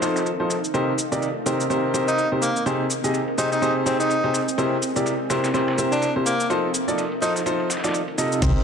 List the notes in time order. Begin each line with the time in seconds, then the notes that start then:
Already playing: D#4 A4 F5
0.02 F3 D#4 F4 A4 C5, snare, ride, cabasa
0.16 snare, ride, cabasa
0.26 ride, cabasa
0.40 F3 D#4 F4 A4 C5, ride
0.50 snare, ride, cabasa
0.64 cabasa
0.74 C3 C4 D#4 G4 A#4 C5, ride, cabasa
0.87 A#4
0.98 ride, cabasa
1.12 C3 D#4 G4 A#4 D5, ride, cabasa
1.22 ride, cabasa
1.43 C3 D#4 G4 A#4 C5 D#5, ride, cabasa
1.60 cabasa
1.70 C3 D#4 G4 A#4 C5, ride, cabasa
1.94 C3 D#4 G4 A#4 C5, ride, cabasa
2.08 D#4, snare, cabasa
2.18 ride, cabasa
2.32 C3 D#4 G4 A#4 C5
2.42 A#3, ride, cabasa
2.56 cabasa
2.66 C3 D#4 G4 G#4 C5, ride, cabasa
2.85 G#4
2.90 ride, cabasa
3.04 C3 D#4 G4 G#4 D#5, cabasa
3.14 ride, cabasa
3.28 ride
3.34 C3 D#4 G4 G#4 C5 G5, ride
3.38 cabasa
3.52 D#4, snare, cabasa
3.62 C3 D#4 G4 G#4 C5, ride, cabasa
3.76 ride
3.86 C3 C4 D#4 G4 G#4 C5, ride, cabasa
4.00 D#4, snare, cabasa
4.10 ride, cabasa
4.24 C3 D#4 G4 G#4 C5, ride
4.34 snare, ride, cabasa
4.48 cabasa
4.58 C3 E4 G4 A#4 C5, ride, cabasa
4.68 A#4
4.82 ride, cabasa
4.96 C3 E4 G4 A#4 D5, ride, cabasa
5.06 ride, cabasa
5.30 C3 E4 G4 A#4 C5, snare, ride, cabasa
5.44 snare, ride, cabasa
5.54 C3 E4 G4 A#4 C5, snare, ride, cabasa
5.68 snare, ride
5.78 C3 E4 G4 A#4 C5, ride, cabasa
5.92 D4, snare, cabasa
6.02 ride, cabasa
6.16 C3 E4 G4 A#4 C5
6.26 A#3, ride, cabasa
6.40 cabasa
6.50 F3 D#4 F4 A4 C5, ride, cabasa
6.66 A4
6.74 ride, cabasa
6.88 F3 D#4 F4 A4 D5, cabasa
6.98 ride, cabasa
7.12 ride
7.22 F3 D#4 F4 A4 C5, ride, cabasa
7.36 snare, cabasa
7.46 F3 D#4 F4 A4 C5, ride, cabasa
7.60 ride
7.70 snare, ride, cabasa
7.77 snare, ride
7.84 F3 D#4 F4 A4 D5, snare, ride, cabasa
7.89 snare, ride
7.94 ride, cabasa
8.08 ride
8.18 C3 D#4 F4 A4 D#5, snare, ride, cabasa
8.32 cabasa
8.42 C2 C3 D#4 G4 A#4 C5, kick, closed hi-hat, crash, ride, cabasa